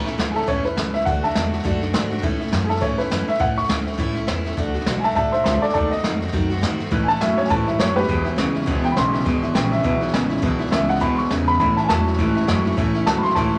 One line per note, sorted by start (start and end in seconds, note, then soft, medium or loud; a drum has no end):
0.00 0.18 A2 medium
0.06 0.17 A3 medium
0.06 0.18 C#4 medium
0.06 0.18 E4 medium
0.06 snare soft
0.18 0.47 D2 loud
0.18 0.35 E3 medium
0.18 0.36 A3 medium
0.18 0.35 C#4 medium
0.18 0.34 E4 medium
0.18 snare loud
0.18 hi-hat pedal medium
0.31 0.47 E4 medium
0.31 0.33 G#4 medium
0.36 0.47 A3 soft
0.36 0.47 C#4 medium
0.36 0.47 A4 loud
0.36 snare soft
0.42 snare soft
0.47 0.76 E2 medium
0.47 0.64 A2 medium
0.47 0.65 E3 medium
0.47 0.65 A3 medium
0.47 0.64 C#4 loud
0.47 0.63 E4 loud
0.47 0.64 C#5 medium
0.47 kick loud
0.47 snare soft
0.64 0.76 A3 soft
0.64 0.77 C#4 medium
0.64 0.76 E4 medium
0.64 0.93 B4 medium
0.64 snare soft
0.76 1.05 C#2 medium
0.76 0.94 E3 medium
0.76 0.94 A3 medium
0.76 0.94 C#4 medium
0.76 0.92 E4 medium
0.76 snare loud
0.76 hi-hat pedal medium
0.94 1.06 A3 soft
0.94 1.07 C#4 soft
0.94 1.06 E4 medium
0.94 1.06 E5 loud
0.94 snare soft
1.00 snare soft
1.05 1.35 D2 medium
1.05 1.24 D3 medium
1.05 1.24 A3 medium
1.05 1.24 D4 medium
1.05 1.22 F#4 medium
1.05 1.23 F#5 loud
1.05 kick loud
1.05 snare soft
1.23 1.34 A3 medium
1.23 1.35 D4 medium
1.23 1.35 F#4 medium
1.23 2.07 E5 medium
1.23 2.09 A5 medium
1.23 snare soft
1.30 snare soft
1.34 1.64 E2 loud
1.34 1.52 D3 medium
1.34 1.53 A3 medium
1.34 1.52 D4 medium
1.34 1.51 F#4 medium
1.34 snare loud
1.34 hi-hat pedal medium
1.52 1.63 A3 soft
1.52 1.64 D4 medium
1.52 1.64 F#4 medium
1.52 snare soft
1.59 snare soft
1.64 1.93 F#2 medium
1.64 1.81 D3 loud
1.64 1.82 A3 loud
1.64 1.82 D4 loud
1.64 1.80 F#4 loud
1.64 kick loud
1.64 snare soft
1.81 1.93 A3 medium
1.81 1.94 D4 medium
1.81 1.94 F#4 medium
1.81 snare soft
1.93 2.22 G#2 loud
1.93 2.11 D3 medium
1.93 2.11 A3 medium
1.93 2.11 D4 medium
1.93 2.09 F#4 medium
1.93 snare loud
1.93 hi-hat pedal medium
2.11 2.22 A3 medium
2.11 2.23 D4 medium
2.11 2.23 F#4 medium
2.11 snare soft
2.17 snare soft
2.22 2.40 A2 medium
2.22 2.52 A2 medium
2.22 2.40 E3 medium
2.22 2.41 A3 loud
2.22 2.40 C#4 medium
2.22 2.38 E4 loud
2.22 kick loud
2.22 snare soft
2.40 2.51 A3 medium
2.40 2.52 C#4 medium
2.40 2.52 E4 medium
2.40 snare soft
2.47 2.69 E3 medium
2.47 snare soft
2.52 2.81 F#2 loud
2.52 2.70 A3 medium
2.52 2.68 C#4 medium
2.52 2.67 E4 medium
2.52 snare loud
2.52 hi-hat pedal medium
2.65 2.81 E4 medium
2.65 2.67 G#4 medium
2.69 2.81 A3 soft
2.69 2.81 C#4 medium
2.69 2.81 A4 medium
2.69 snare soft
2.76 snare soft
2.81 2.98 G#2 medium
2.81 2.99 A2 medium
2.81 2.99 E3 medium
2.81 2.99 A3 medium
2.81 2.98 C#4 medium
2.81 2.97 E4 medium
2.81 2.98 C#5 medium
2.81 kick loud
2.81 snare soft
2.98 3.10 A3 soft
2.98 3.10 C#4 medium
2.98 3.10 E4 medium
2.98 3.27 B4 medium
2.98 muted upright bass stroke soft
2.98 snare soft
3.05 snare soft
3.10 3.27 F#2 medium
3.10 3.28 E3 medium
3.10 3.28 A3 medium
3.10 3.28 C#4 medium
3.10 3.27 E4 medium
3.10 snare loud
3.10 hi-hat pedal medium
3.28 3.39 A3 soft
3.28 3.39 C#4 soft
3.28 3.40 E4 medium
3.28 3.40 E5 loud
3.28 muted upright bass stroke soft
3.28 snare soft
3.34 snare soft
3.39 3.69 E2 medium
3.39 3.57 A2 medium
3.39 3.57 E3 medium
3.39 3.57 A3 medium
3.39 3.56 C#4 medium
3.39 3.55 E4 medium
3.39 3.57 F#5 loud
3.39 kick loud
3.39 snare soft
3.56 3.67 A3 medium
3.56 3.68 C#4 medium
3.56 3.69 E4 medium
3.56 4.43 C#6 medium
3.56 snare soft
3.63 snare soft
3.68 3.98 D2 loud
3.68 3.86 E3 medium
3.68 3.86 A3 medium
3.68 3.85 C#4 medium
3.68 3.84 E4 medium
3.68 snare loud
3.68 hi-hat pedal medium
3.85 3.97 A3 soft
3.85 3.98 C#4 soft
3.85 3.98 E4 medium
3.85 snare soft
3.92 snare soft
3.98 4.27 C#2 medium
3.98 4.16 A2 medium
3.98 4.16 E3 medium
3.98 4.16 A3 medium
3.98 4.15 C#4 medium
3.98 4.13 E4 loud
3.98 kick loud
3.98 snare soft
4.15 4.27 A3 medium
4.15 4.28 C#4 medium
4.15 4.27 E4 medium
4.15 snare soft
4.27 4.56 E2 medium
4.27 4.45 E3 medium
4.27 4.46 A3 medium
4.27 4.45 C#4 medium
4.27 4.43 E4 medium
4.27 snare loud
4.27 hi-hat pedal medium
4.45 4.56 A3 medium
4.45 4.58 C#4 medium
4.45 4.57 E4 medium
4.45 snare soft
4.51 snare soft
4.57 4.86 D2 medium
4.57 4.75 D3 medium
4.57 4.75 A3 medium
4.57 4.75 D4 medium
4.57 4.73 F#4 loud
4.57 kick loud
4.57 snare soft
4.74 4.86 A3 medium
4.74 4.87 D4 medium
4.74 4.86 F#4 medium
4.74 snare soft
4.81 snare soft
4.86 5.15 B1 medium
4.86 5.04 D3 medium
4.86 5.04 A3 medium
4.86 5.03 D4 medium
4.86 5.02 F#4 medium
4.86 snare loud
4.86 hi-hat pedal medium
5.00 5.16 F#4 medium
5.00 5.14 E5 loud
5.00 5.02 G#5 medium
5.04 5.15 A3 soft
5.04 5.16 D4 soft
5.04 5.14 A5 loud
5.04 snare soft
5.10 snare soft
5.15 5.45 A1 medium
5.15 5.33 D3 medium
5.15 5.33 A3 medium
5.15 5.33 D4 medium
5.15 5.31 F#4 medium
5.15 5.31 E5 medium
5.15 5.33 A5 loud
5.15 kick loud
5.15 snare soft
5.32 5.44 A3 soft
5.32 5.45 D4 medium
5.32 5.45 F#4 medium
5.32 5.43 C5 medium
5.32 5.43 E5 loud
5.32 snare soft
5.44 5.61 C#2 loud
5.44 5.62 D3 medium
5.44 5.62 A3 medium
5.44 5.62 D4 medium
5.44 5.60 F#4 medium
5.44 5.61 C5 medium
5.44 5.62 E5 loud
5.44 snare loud
5.44 hi-hat pedal medium
5.61 5.74 A3 soft
5.61 5.75 D4 medium
5.61 5.74 F#4 medium
5.61 5.72 A4 medium
5.61 5.72 D5 loud
5.61 muted upright bass stroke soft
5.61 snare soft
5.69 snare soft
5.73 5.91 D#2 medium
5.73 5.92 D#3 medium
5.73 5.92 A3 medium
5.73 5.92 C4 medium
5.73 5.90 F#4 medium
5.73 5.90 A4 medium
5.73 5.91 D5 loud
5.73 kick loud
5.73 snare soft
5.91 6.03 A3 soft
5.91 6.04 C4 medium
5.91 6.03 F#4 medium
5.91 6.48 D#5 loud
5.91 muted upright bass stroke soft
5.91 snare soft
5.98 snare soft
6.03 6.32 F2 medium
6.03 6.21 D#3 medium
6.03 6.21 A3 medium
6.03 6.21 C4 medium
6.03 6.19 F#4 medium
6.03 snare loud
6.03 hi-hat pedal medium
6.21 6.32 A3 soft
6.21 6.32 C4 soft
6.21 6.33 F#4 medium
6.21 snare soft
6.27 snare soft
6.33 6.62 F#2 loud
6.33 6.50 D#3 medium
6.33 6.50 A3 medium
6.33 6.50 C4 loud
6.33 6.49 F#4 medium
6.33 kick loud
6.33 snare soft
6.50 6.61 A3 medium
6.50 6.62 C4 medium
6.50 6.62 F#4 medium
6.50 snare soft
6.57 snare soft
6.62 6.91 G#2 medium
6.62 6.79 D#3 medium
6.62 6.80 A3 medium
6.62 6.79 C4 medium
6.62 6.78 F#4 medium
6.62 snare loud
6.62 hi-hat pedal medium
6.79 6.91 A3 medium
6.79 6.92 C4 medium
6.79 6.91 F#4 medium
6.79 snare soft
6.86 snare soft
6.91 7.08 A2 medium
6.91 7.20 A2 medium
6.91 7.09 E3 medium
6.91 7.09 A3 medium
6.91 7.08 C#4 medium
6.91 7.07 E4 medium
6.91 kick loud
6.91 snare soft
7.04 7.06 G#5 medium
7.08 7.20 A3 medium
7.08 7.20 C#4 medium
7.08 7.21 E4 medium
7.08 7.20 A5 loud
7.08 snare soft
7.15 snare soft
7.20 7.37 F#2 medium
7.20 7.48 A2 medium
7.20 7.38 E3 medium
7.20 7.48 F#3 medium
7.20 7.38 A3 medium
7.20 7.37 C#4 medium
7.20 7.35 E4 medium
7.20 7.38 E5 loud
7.20 snare loud
7.20 hi-hat pedal medium
7.37 7.49 A3 soft
7.37 7.49 C#4 medium
7.37 7.49 E4 medium
7.37 7.50 C#5 loud
7.37 muted upright bass stroke soft
7.37 snare soft
7.44 7.48 G#5 medium
7.44 snare soft
7.49 7.79 G#2 medium
7.49 7.67 A2 medium
7.49 7.67 E3 medium
7.49 7.68 A3 medium
7.49 7.67 C#4 medium
7.49 7.66 E4 loud
7.49 7.67 A5 loud
7.49 kick loud
7.49 snare soft
7.67 7.79 A3 soft
7.67 7.79 C#4 medium
7.67 7.79 E4 medium
7.67 7.79 E5 medium
7.67 snare soft
7.79 8.08 F#2 medium
7.79 8.06 A2 medium
7.79 7.96 E3 medium
7.79 8.06 F#3 loud
7.79 7.97 A3 medium
7.79 7.96 C#4 medium
7.79 7.95 E4 medium
7.79 7.96 C#5 loud
7.79 snare loud
7.79 hi-hat pedal medium
7.96 8.09 A3 soft
7.96 8.09 C#4 soft
7.96 8.08 E4 medium
7.96 8.23 G4 loud
7.96 8.25 B4 loud
7.96 snare soft
8.03 snare soft
8.08 8.26 E2 medium
8.08 8.37 E2 medium
8.08 8.26 B2 medium
8.08 8.26 E3 medium
8.08 8.25 G#3 medium
8.08 8.24 B3 medium
8.08 8.23 E4 medium
8.08 kick loud
8.08 snare soft
8.24 8.35 E3 soft
8.24 8.36 G#3 medium
8.24 8.37 B3 medium
8.24 8.37 E4 medium
8.24 snare soft
8.36 8.54 D2 medium
8.36 8.65 E2 medium
8.36 8.65 C#3 loud
8.36 8.54 E3 medium
8.36 8.55 G#3 medium
8.36 8.54 B3 medium
8.36 8.53 E4 medium
8.36 snare loud
8.36 hi-hat pedal loud
8.55 8.66 E3 soft
8.55 8.66 G#3 medium
8.55 8.66 B3 medium
8.55 8.67 E4 medium
8.55 muted upright bass stroke soft
8.55 snare soft
8.61 snare soft
8.66 8.96 C#2 medium
8.66 8.84 E2 medium
8.66 8.84 B2 medium
8.66 8.85 E3 loud
8.66 8.84 G#3 loud
8.66 8.83 B3 loud
8.66 8.82 E4 loud
8.66 kick loud
8.66 snare soft
8.84 8.95 E3 soft
8.84 8.96 G#3 medium
8.84 8.96 B3 medium
8.84 8.96 E4 medium
8.84 8.96 G5 loud
8.84 snare soft
8.92 8.95 B5 medium
8.96 9.25 B1 loud
8.96 9.23 E2 medium
8.96 9.24 C#3 loud
8.96 9.14 E3 medium
8.96 9.14 G#3 medium
8.96 9.13 B3 medium
8.96 9.12 E4 medium
8.96 9.53 C6 loud
8.96 snare loud
8.96 hi-hat pedal medium
9.13 9.25 E3 soft
9.13 9.25 G#3 soft
9.13 9.25 B3 medium
9.13 9.26 E4 medium
9.13 snare soft
9.20 snare soft
9.25 9.54 G#1 medium
9.25 9.43 E2 medium
9.25 9.43 B2 medium
9.25 9.43 E3 medium
9.25 9.43 G#3 medium
9.25 9.42 B3 medium
9.25 9.41 E4 medium
9.25 kick loud
9.25 snare soft
9.43 9.53 E3 medium
9.43 9.54 G#3 medium
9.43 9.55 B3 medium
9.43 9.55 E4 medium
9.43 snare soft
9.54 9.83 A#1 loud
9.54 9.82 E2 medium
9.54 9.82 C#3 loud
9.54 9.72 E3 medium
9.54 9.72 G#3 medium
9.54 9.71 B3 medium
9.54 9.70 E4 medium
9.54 9.72 G5 loud
9.54 snare loud
9.54 hi-hat pedal medium
9.71 9.83 E3 soft
9.71 9.83 G#3 soft
9.71 9.84 B3 medium
9.71 9.84 E4 medium
9.71 9.83 E5 loud
9.71 snare soft
9.79 snare soft
9.83 10.13 B1 medium
9.83 10.01 E2 medium
9.83 10.01 B2 medium
9.83 10.02 E3 loud
9.83 10.01 G#3 medium
9.83 10.00 B3 loud
9.83 9.99 E4 medium
9.83 10.13 E5 loud
9.83 kick loud
9.83 snare soft
10.01 10.11 E3 soft
10.01 10.12 G#3 medium
10.01 10.13 B3 medium
10.01 10.13 E4 medium
10.01 snare soft
10.08 snare soft
10.12 10.42 A1 loud
10.12 10.41 E2 medium
10.12 10.41 C#3 loud
10.12 10.30 E3 medium
10.12 10.30 G#3 medium
10.12 10.29 B3 medium
10.12 10.28 E4 medium
10.12 snare loud
10.12 hi-hat pedal medium
10.29 10.41 E3 soft
10.29 10.41 G#3 medium
10.29 10.42 B3 medium
10.29 10.42 E4 medium
10.29 snare soft
10.37 snare soft
10.42 10.71 B1 medium
10.42 10.60 E2 medium
10.42 10.60 B2 loud
10.42 10.60 E3 loud
10.42 10.60 G#3 loud
10.42 10.59 B3 loud
10.42 10.58 E4 loud
10.42 kick loud
10.42 snare soft
10.59 10.70 E3 medium
10.59 10.71 G#3 medium
10.59 10.71 B3 medium
10.59 10.72 E4 medium
10.59 snare soft
10.66 snare soft
10.71 11.00 C#2 loud
10.71 10.99 E2 medium
10.71 10.99 C#3 loud
10.71 10.89 E3 medium
10.71 10.89 G#3 medium
10.71 10.88 B3 medium
10.71 10.87 E4 medium
10.71 10.89 E5 loud
10.71 snare loud
10.71 hi-hat pedal medium
10.88 11.00 E3 soft
10.88 11.00 G#3 medium
10.88 11.00 B3 medium
10.88 11.01 E4 medium
10.88 11.01 F#5 loud
10.88 snare soft
10.95 snare soft
11.00 11.30 D2 loud
11.00 11.18 E2 medium
11.00 11.18 B2 medium
11.00 11.19 E3 loud
11.00 11.18 G#3 medium
11.00 11.17 B3 loud
11.00 11.16 E4 loud
11.00 11.18 B5 medium
11.00 kick loud
11.00 snare soft
11.14 11.30 E4 medium
11.14 11.16 C6 medium
11.18 11.28 E3 medium
11.18 11.29 G#3 medium
11.18 11.30 B3 medium
11.18 11.47 C#6 medium
11.18 snare soft
11.25 snare soft
11.29 11.59 E2 loud
11.29 11.58 E2 medium
11.29 11.58 C#3 loud
11.29 11.47 E3 medium
11.29 11.47 G#3 medium
11.29 11.47 B3 medium
11.29 11.46 E4 medium
11.29 snare loud
11.29 hi-hat pedal medium
11.47 11.59 E3 soft
11.47 11.60 G#3 soft
11.47 11.60 B3 medium
11.47 11.60 E4 medium
11.47 11.58 B5 loud
11.47 snare soft
11.54 snare soft
11.60 11.77 A2 medium
11.60 11.88 A2 loud
11.60 11.77 E3 medium
11.60 11.78 A3 medium
11.60 11.78 C#4 medium
11.60 11.76 E4 medium
11.60 11.77 B5 loud
11.60 kick loud
11.60 snare soft
11.77 11.89 A3 soft
11.77 11.90 C#4 medium
11.77 11.89 E4 medium
11.77 11.87 A5 medium
11.77 snare soft
11.84 11.87 G#5 medium
11.89 12.18 E2 medium
11.89 12.16 A2 medium
11.89 12.06 E3 medium
11.89 12.16 F#3 loud
11.89 12.07 A3 medium
11.89 12.06 C#4 medium
11.89 12.05 E4 medium
11.89 12.46 A5 loud
11.89 snare loud
11.89 hi-hat pedal medium
12.06 12.18 A3 soft
12.06 12.19 C#4 soft
12.06 12.18 E4 medium
12.06 snare soft
12.13 snare soft
12.19 12.47 G#2 loud
12.19 12.36 A2 medium
12.19 12.36 E3 medium
12.19 12.36 A3 medium
12.19 12.36 C#4 medium
12.19 12.34 E4 loud
12.19 kick loud
12.19 snare soft
12.35 12.47 A3 medium
12.35 12.48 C#4 medium
12.35 12.48 E4 medium
12.35 snare soft
12.42 snare soft
12.47 12.77 F#2 loud
12.47 12.75 A2 medium
12.47 12.65 E3 medium
12.47 12.75 F#3 medium
12.47 12.65 A3 medium
12.47 12.65 C#4 medium
12.47 12.64 E4 medium
12.47 snare loud
12.47 hi-hat pedal medium
12.65 12.77 A3 medium
12.65 12.77 C#4 medium
12.65 12.77 E4 medium
12.65 snare soft
12.72 snare soft
12.77 12.94 E2 medium
12.77 12.94 A2 medium
12.77 12.95 E3 loud
12.77 12.95 A3 medium
12.77 12.95 C#4 loud
12.77 12.93 E4 loud
12.77 kick loud
12.77 snare soft
12.95 13.07 A3 medium
12.95 13.07 C#4 medium
12.95 13.07 E4 medium
12.95 muted upright bass stroke soft
12.95 snare soft
13.06 13.23 D2 medium
13.06 13.33 A2 medium
13.06 13.24 E3 medium
13.06 13.34 F#3 loud
13.06 13.25 A3 medium
13.06 13.24 C#4 medium
13.06 13.23 E4 medium
13.06 13.23 A5 loud
13.06 snare loud
13.06 hi-hat pedal medium
13.19 13.21 B5 medium
13.23 13.36 A3 soft
13.23 13.37 C#4 medium
13.23 13.36 E4 medium
13.23 13.35 C6 loud
13.23 muted upright bass stroke soft
13.23 snare soft
13.30 snare soft
13.35 13.59 C#2 medium
13.35 13.53 A2 medium
13.35 13.54 E3 medium
13.35 13.54 A3 loud
13.35 13.54 C#4 medium
13.35 13.52 E4 loud
13.35 13.59 A5 medium
13.35 kick loud
13.35 snare medium
13.54 13.59 C#4 medium
13.54 13.59 E4 medium